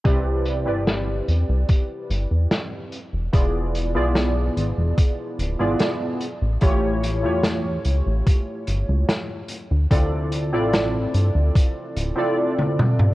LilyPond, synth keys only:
\new Staff \with { instrumentName = "Synth keys" } { \time 4/4 \key c \major \tempo 4 = 73 <c' e' g' b' d''>8. <c' e' g' b' d''>2~ <c' e' g' b' d''>8. r8 | <b e' f' gis' d''>8. <b e' f' gis' d''>16 r4. r16 <b e' f' gis' d''>8. r8 | <a e' f' g' cis''>8. <a e' f' g' cis''>2~ <a e' f' g' cis''>8. r8 | <c' e' f' a' d''>8. <c' e' f' a' d''>16 r4. r16 <c' e' f' a' d''>16 r4 | }